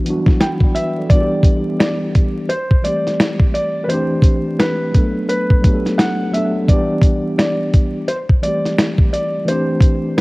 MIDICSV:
0, 0, Header, 1, 4, 480
1, 0, Start_track
1, 0, Key_signature, 1, "minor"
1, 0, Tempo, 697674
1, 756, Time_signature, 4, 2, 24, 8
1, 7024, End_track
2, 0, Start_track
2, 0, Title_t, "Felt piano"
2, 0, Program_c, 0, 0
2, 277, Note_on_c, 0, 79, 99
2, 331, Note_off_c, 0, 79, 0
2, 514, Note_on_c, 0, 76, 93
2, 738, Note_off_c, 0, 76, 0
2, 753, Note_on_c, 0, 74, 94
2, 1207, Note_off_c, 0, 74, 0
2, 1234, Note_on_c, 0, 74, 80
2, 1687, Note_off_c, 0, 74, 0
2, 1714, Note_on_c, 0, 72, 96
2, 1955, Note_on_c, 0, 74, 97
2, 1962, Note_off_c, 0, 72, 0
2, 2408, Note_off_c, 0, 74, 0
2, 2436, Note_on_c, 0, 74, 98
2, 2641, Note_on_c, 0, 71, 67
2, 2647, Note_off_c, 0, 74, 0
2, 2676, Note_off_c, 0, 71, 0
2, 2676, Note_on_c, 0, 72, 92
2, 3159, Note_on_c, 0, 71, 79
2, 3170, Note_off_c, 0, 72, 0
2, 3610, Note_off_c, 0, 71, 0
2, 3637, Note_on_c, 0, 71, 94
2, 4115, Note_on_c, 0, 78, 96
2, 4131, Note_off_c, 0, 71, 0
2, 4358, Note_on_c, 0, 76, 93
2, 4363, Note_off_c, 0, 78, 0
2, 4598, Note_on_c, 0, 74, 84
2, 4604, Note_off_c, 0, 76, 0
2, 5069, Note_off_c, 0, 74, 0
2, 5079, Note_on_c, 0, 74, 83
2, 5530, Note_off_c, 0, 74, 0
2, 5558, Note_on_c, 0, 72, 91
2, 5612, Note_off_c, 0, 72, 0
2, 5798, Note_on_c, 0, 74, 98
2, 6269, Note_off_c, 0, 74, 0
2, 6280, Note_on_c, 0, 74, 91
2, 6522, Note_on_c, 0, 72, 87
2, 6525, Note_off_c, 0, 74, 0
2, 7000, Note_on_c, 0, 71, 69
2, 7013, Note_off_c, 0, 72, 0
2, 7024, Note_off_c, 0, 71, 0
2, 7024, End_track
3, 0, Start_track
3, 0, Title_t, "Tine electric piano"
3, 0, Program_c, 1, 4
3, 0, Control_c, 1, 64, 127
3, 0, Note_on_c, 1, 52, 74
3, 0, Note_on_c, 1, 55, 59
3, 0, Note_on_c, 1, 59, 66
3, 0, Note_on_c, 1, 62, 70
3, 0, Note_on_c, 1, 66, 73
3, 29, Note_off_c, 1, 52, 0
3, 29, Note_on_c, 1, 52, 85
3, 40, Note_on_c, 1, 54, 59
3, 49, Note_off_c, 1, 59, 0
3, 49, Note_on_c, 1, 59, 70
3, 60, Note_off_c, 1, 62, 0
3, 60, Note_on_c, 1, 62, 78
3, 71, Note_off_c, 1, 66, 0
3, 71, Note_on_c, 1, 66, 91
3, 83, Note_off_c, 1, 55, 0
3, 83, Note_on_c, 1, 55, 69
3, 95, Note_off_c, 1, 54, 0
3, 288, Note_on_c, 1, 83, 61
3, 292, Note_on_c, 1, 78, 54
3, 428, Note_off_c, 1, 83, 0
3, 430, Note_off_c, 1, 78, 0
3, 438, Note_on_c, 1, 79, 66
3, 442, Note_on_c, 1, 74, 61
3, 458, Note_off_c, 1, 52, 0
3, 468, Note_off_c, 1, 59, 0
3, 474, Note_off_c, 1, 62, 0
3, 479, Note_off_c, 1, 66, 0
3, 485, Note_off_c, 1, 55, 0
3, 516, Note_off_c, 1, 79, 0
3, 519, Note_off_c, 1, 74, 0
3, 530, Note_on_c, 1, 76, 66
3, 534, Note_on_c, 1, 71, 57
3, 669, Note_off_c, 1, 76, 0
3, 671, Note_off_c, 1, 71, 0
3, 674, Note_on_c, 1, 74, 58
3, 679, Note_on_c, 1, 69, 54
3, 746, Note_on_c, 1, 52, 95
3, 757, Note_on_c, 1, 55, 94
3, 765, Control_c, 1, 64, 0
3, 767, Note_on_c, 1, 59, 85
3, 777, Note_on_c, 1, 62, 90
3, 788, Note_on_c, 1, 66, 83
3, 829, Note_off_c, 1, 66, 0
3, 833, Note_on_c, 1, 67, 121
3, 900, Note_off_c, 1, 74, 0
3, 902, Note_off_c, 1, 69, 0
3, 904, Control_c, 1, 64, 127
3, 1587, Note_off_c, 1, 52, 0
3, 1592, Note_off_c, 1, 55, 0
3, 1597, Note_off_c, 1, 59, 0
3, 1602, Note_off_c, 1, 62, 0
3, 1630, Note_off_c, 1, 67, 0
3, 1724, Control_c, 1, 64, 0
3, 1837, Control_c, 1, 64, 127
3, 1943, Note_on_c, 1, 52, 66
3, 1953, Note_on_c, 1, 55, 65
3, 1962, Note_on_c, 1, 57, 65
3, 1972, Note_on_c, 1, 60, 66
3, 1983, Note_on_c, 1, 67, 71
3, 2588, Note_off_c, 1, 52, 0
3, 2593, Note_off_c, 1, 55, 0
3, 2598, Note_off_c, 1, 57, 0
3, 2603, Note_off_c, 1, 60, 0
3, 2608, Note_off_c, 1, 67, 0
3, 2668, Note_on_c, 1, 52, 98
3, 2678, Note_on_c, 1, 57, 88
3, 2686, Control_c, 1, 64, 0
3, 2688, Note_on_c, 1, 60, 90
3, 2699, Note_on_c, 1, 62, 92
3, 2708, Note_on_c, 1, 67, 119
3, 2792, Control_c, 1, 64, 127
3, 3383, Note_on_c, 1, 54, 80
3, 3384, Note_off_c, 1, 52, 0
3, 3385, Note_off_c, 1, 57, 0
3, 3393, Note_on_c, 1, 57, 77
3, 3394, Note_off_c, 1, 60, 0
3, 3400, Note_off_c, 1, 62, 0
3, 3404, Note_on_c, 1, 59, 75
3, 3405, Note_off_c, 1, 67, 0
3, 3405, Control_c, 1, 64, 0
3, 3413, Note_on_c, 1, 62, 70
3, 3424, Note_on_c, 1, 69, 88
3, 3519, Control_c, 1, 64, 127
3, 3815, Note_off_c, 1, 54, 0
3, 3820, Note_off_c, 1, 57, 0
3, 3826, Note_off_c, 1, 59, 0
3, 3831, Note_off_c, 1, 62, 0
3, 3836, Note_off_c, 1, 69, 0
3, 3862, Note_on_c, 1, 54, 86
3, 3872, Note_on_c, 1, 57, 79
3, 3882, Note_on_c, 1, 59, 69
3, 3893, Note_on_c, 1, 62, 76
3, 3903, Note_on_c, 1, 67, 84
3, 3947, Note_off_c, 1, 67, 0
3, 3948, Note_on_c, 1, 69, 87
3, 4295, Note_off_c, 1, 54, 0
3, 4300, Note_off_c, 1, 57, 0
3, 4305, Note_off_c, 1, 59, 0
3, 4310, Note_off_c, 1, 62, 0
3, 4338, Note_off_c, 1, 69, 0
3, 4343, Note_on_c, 1, 54, 83
3, 4352, Note_on_c, 1, 57, 77
3, 4363, Note_on_c, 1, 59, 67
3, 4373, Note_on_c, 1, 62, 76
3, 4383, Note_on_c, 1, 69, 96
3, 4562, Note_off_c, 1, 54, 0
3, 4567, Note_off_c, 1, 57, 0
3, 4572, Note_off_c, 1, 59, 0
3, 4577, Note_off_c, 1, 62, 0
3, 4583, Note_off_c, 1, 69, 0
3, 4589, Note_on_c, 1, 52, 98
3, 4600, Note_on_c, 1, 55, 88
3, 4604, Control_c, 1, 64, 0
3, 4609, Note_on_c, 1, 59, 87
3, 4620, Note_on_c, 1, 62, 93
3, 4630, Note_on_c, 1, 67, 116
3, 4715, Control_c, 1, 64, 127
3, 5428, Note_off_c, 1, 52, 0
3, 5434, Note_off_c, 1, 55, 0
3, 5438, Note_off_c, 1, 59, 0
3, 5444, Note_off_c, 1, 62, 0
3, 5449, Note_off_c, 1, 67, 0
3, 5564, Control_c, 1, 64, 0
3, 5667, Control_c, 1, 64, 127
3, 5791, Note_on_c, 1, 52, 70
3, 5800, Note_on_c, 1, 55, 64
3, 5811, Note_on_c, 1, 57, 68
3, 5821, Note_on_c, 1, 60, 62
3, 5831, Note_on_c, 1, 67, 86
3, 6432, Note_off_c, 1, 52, 0
3, 6437, Note_off_c, 1, 55, 0
3, 6442, Note_off_c, 1, 57, 0
3, 6447, Note_off_c, 1, 60, 0
3, 6452, Note_off_c, 1, 67, 0
3, 6504, Note_on_c, 1, 52, 96
3, 6513, Note_on_c, 1, 57, 87
3, 6524, Note_on_c, 1, 60, 88
3, 6525, Control_c, 1, 64, 0
3, 6535, Note_on_c, 1, 62, 91
3, 6545, Note_on_c, 1, 67, 110
3, 6627, Control_c, 1, 64, 127
3, 7024, Note_off_c, 1, 52, 0
3, 7024, Note_off_c, 1, 57, 0
3, 7024, Note_off_c, 1, 60, 0
3, 7024, Note_off_c, 1, 62, 0
3, 7024, Note_off_c, 1, 67, 0
3, 7024, End_track
4, 0, Start_track
4, 0, Title_t, "Drums"
4, 41, Note_on_c, 9, 42, 69
4, 110, Note_off_c, 9, 42, 0
4, 181, Note_on_c, 9, 36, 85
4, 192, Note_on_c, 9, 38, 33
4, 250, Note_off_c, 9, 36, 0
4, 260, Note_off_c, 9, 38, 0
4, 280, Note_on_c, 9, 38, 111
4, 285, Note_on_c, 9, 42, 84
4, 349, Note_off_c, 9, 38, 0
4, 354, Note_off_c, 9, 42, 0
4, 416, Note_on_c, 9, 36, 98
4, 485, Note_off_c, 9, 36, 0
4, 521, Note_on_c, 9, 42, 80
4, 589, Note_off_c, 9, 42, 0
4, 755, Note_on_c, 9, 36, 111
4, 759, Note_on_c, 9, 42, 73
4, 824, Note_off_c, 9, 36, 0
4, 828, Note_off_c, 9, 42, 0
4, 983, Note_on_c, 9, 36, 107
4, 993, Note_on_c, 9, 42, 76
4, 1052, Note_off_c, 9, 36, 0
4, 1061, Note_off_c, 9, 42, 0
4, 1240, Note_on_c, 9, 38, 100
4, 1243, Note_on_c, 9, 42, 66
4, 1309, Note_off_c, 9, 38, 0
4, 1312, Note_off_c, 9, 42, 0
4, 1479, Note_on_c, 9, 42, 59
4, 1481, Note_on_c, 9, 36, 88
4, 1548, Note_off_c, 9, 42, 0
4, 1550, Note_off_c, 9, 36, 0
4, 1718, Note_on_c, 9, 42, 70
4, 1787, Note_off_c, 9, 42, 0
4, 1863, Note_on_c, 9, 36, 77
4, 1932, Note_off_c, 9, 36, 0
4, 1959, Note_on_c, 9, 42, 75
4, 2028, Note_off_c, 9, 42, 0
4, 2111, Note_on_c, 9, 38, 34
4, 2115, Note_on_c, 9, 42, 45
4, 2180, Note_off_c, 9, 38, 0
4, 2184, Note_off_c, 9, 42, 0
4, 2201, Note_on_c, 9, 38, 122
4, 2206, Note_on_c, 9, 42, 80
4, 2270, Note_off_c, 9, 38, 0
4, 2274, Note_off_c, 9, 42, 0
4, 2336, Note_on_c, 9, 36, 96
4, 2405, Note_off_c, 9, 36, 0
4, 2442, Note_on_c, 9, 42, 69
4, 2511, Note_off_c, 9, 42, 0
4, 2681, Note_on_c, 9, 42, 84
4, 2750, Note_off_c, 9, 42, 0
4, 2905, Note_on_c, 9, 36, 111
4, 2915, Note_on_c, 9, 42, 82
4, 2974, Note_off_c, 9, 36, 0
4, 2984, Note_off_c, 9, 42, 0
4, 3162, Note_on_c, 9, 38, 103
4, 3165, Note_on_c, 9, 42, 69
4, 3231, Note_off_c, 9, 38, 0
4, 3234, Note_off_c, 9, 42, 0
4, 3401, Note_on_c, 9, 42, 64
4, 3403, Note_on_c, 9, 36, 77
4, 3470, Note_off_c, 9, 42, 0
4, 3471, Note_off_c, 9, 36, 0
4, 3642, Note_on_c, 9, 42, 79
4, 3710, Note_off_c, 9, 42, 0
4, 3786, Note_on_c, 9, 36, 80
4, 3854, Note_off_c, 9, 36, 0
4, 3881, Note_on_c, 9, 42, 76
4, 3882, Note_on_c, 9, 36, 85
4, 3950, Note_off_c, 9, 36, 0
4, 3950, Note_off_c, 9, 42, 0
4, 4033, Note_on_c, 9, 38, 35
4, 4037, Note_on_c, 9, 42, 43
4, 4101, Note_off_c, 9, 38, 0
4, 4105, Note_off_c, 9, 42, 0
4, 4122, Note_on_c, 9, 38, 111
4, 4127, Note_on_c, 9, 42, 90
4, 4191, Note_off_c, 9, 38, 0
4, 4196, Note_off_c, 9, 42, 0
4, 4364, Note_on_c, 9, 42, 76
4, 4432, Note_off_c, 9, 42, 0
4, 4598, Note_on_c, 9, 36, 100
4, 4602, Note_on_c, 9, 42, 80
4, 4667, Note_off_c, 9, 36, 0
4, 4671, Note_off_c, 9, 42, 0
4, 4826, Note_on_c, 9, 36, 100
4, 4835, Note_on_c, 9, 42, 74
4, 4895, Note_off_c, 9, 36, 0
4, 4904, Note_off_c, 9, 42, 0
4, 5083, Note_on_c, 9, 38, 87
4, 5086, Note_on_c, 9, 42, 67
4, 5152, Note_off_c, 9, 38, 0
4, 5155, Note_off_c, 9, 42, 0
4, 5322, Note_on_c, 9, 42, 58
4, 5324, Note_on_c, 9, 36, 82
4, 5391, Note_off_c, 9, 42, 0
4, 5392, Note_off_c, 9, 36, 0
4, 5561, Note_on_c, 9, 42, 78
4, 5629, Note_off_c, 9, 42, 0
4, 5706, Note_on_c, 9, 36, 78
4, 5775, Note_off_c, 9, 36, 0
4, 5802, Note_on_c, 9, 42, 68
4, 5871, Note_off_c, 9, 42, 0
4, 5954, Note_on_c, 9, 38, 36
4, 5958, Note_on_c, 9, 42, 50
4, 6023, Note_off_c, 9, 38, 0
4, 6027, Note_off_c, 9, 42, 0
4, 6043, Note_on_c, 9, 38, 115
4, 6048, Note_on_c, 9, 42, 76
4, 6112, Note_off_c, 9, 38, 0
4, 6117, Note_off_c, 9, 42, 0
4, 6179, Note_on_c, 9, 36, 98
4, 6248, Note_off_c, 9, 36, 0
4, 6285, Note_on_c, 9, 42, 69
4, 6354, Note_off_c, 9, 42, 0
4, 6523, Note_on_c, 9, 42, 77
4, 6592, Note_off_c, 9, 42, 0
4, 6746, Note_on_c, 9, 36, 108
4, 6757, Note_on_c, 9, 42, 83
4, 6815, Note_off_c, 9, 36, 0
4, 6825, Note_off_c, 9, 42, 0
4, 7003, Note_on_c, 9, 38, 98
4, 7024, Note_off_c, 9, 38, 0
4, 7024, End_track
0, 0, End_of_file